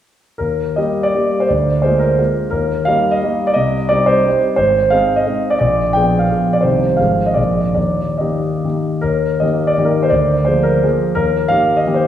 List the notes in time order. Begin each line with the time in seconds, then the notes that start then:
0.38 D#2 A#4
0.76 G3 A#3 G4 D#5
1.03 D5
1.15 G3 A#3 G4
1.40 C5
1.48 D2 D5
1.82 G#3 A#3 F4 C5
1.99 A#4
2.18 G#3 A#3 F4
2.51 D#2 A#4
2.85 G3 A#3 D#4 F5
3.11 D#5
3.23 G3 A#3 D#4
3.47 D5
3.54 C2 D#5
3.89 G3 C4 D#4 D5
4.06 C5
4.24 G3 C4 D#4
4.56 G#1 C5
4.90 G#3 C4 D#4 F5
5.16 D#5
5.27 G#3 C4 D#4
5.50 D5
5.59 A#1 D5
5.93 F3 B3 G#4 G5
6.19 F5
6.30 F3 B3 G#4
6.53 D5
6.61 C2 D#3 C4 G4 C5
6.97 G#1 F3 C4 G#4 F5
7.26 D#5
7.34 A#1 F3 A#3 G#4 D5
7.75 D#2 D5
8.18 D#3 A#3 G4 D#5
8.64 D#3 A#3 G4
9.01 D#2 A#4
9.40 D#3 A#3 G4 D#5
9.67 D5
9.78 D#3 A#3 G4
9.85 A#4
10.03 C5
10.10 D2 D5
10.45 F3 A#3 G#4 C5
10.63 A#4
10.83 F3 A#3 G#4
11.15 D#2 A#4
11.48 D#3 A#3 G4 F5
11.77 D#5
11.87 D#3 A#3 G4
11.94 C5